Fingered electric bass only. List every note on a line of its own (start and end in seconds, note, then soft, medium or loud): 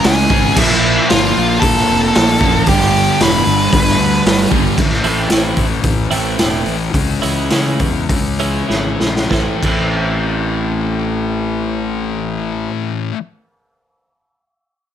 0.05 0.26 C#2 loud
0.30 0.51 G#1 loud
0.56 0.98 A#1 loud
1.11 1.32 G1 medium
1.37 1.58 A#1 loud
1.62 1.83 A#1 loud
1.90 2.10 F1 loud
2.17 2.37 A#1 medium
2.41 2.61 F#1 medium
2.67 3.09 G1 medium
3.21 3.41 E1 loud
3.47 3.67 G1 medium
3.73 3.94 G1 loud
3.99 4.20 D2 loud
4.26 4.46 G1 medium
4.52 4.73 G1 medium
4.78 5.00 A1 medium
5.05 5.27 A1 medium
5.31 5.54 A1 medium
5.57 5.81 A1 medium
5.83 6.07 A1 medium
6.11 6.35 A1 medium
6.39 6.63 E1 medium
6.67 6.91 A1 medium
6.94 7.18 C#2 medium
7.23 7.48 C#2 medium
7.51 7.76 C#3 medium
7.80 8.05 E2 medium
8.09 8.61 C#2 medium
8.70 8.96 G#1 medium
9.00 9.27 A#1 medium
9.31 9.49 A1 medium
9.63 12.67 A1 medium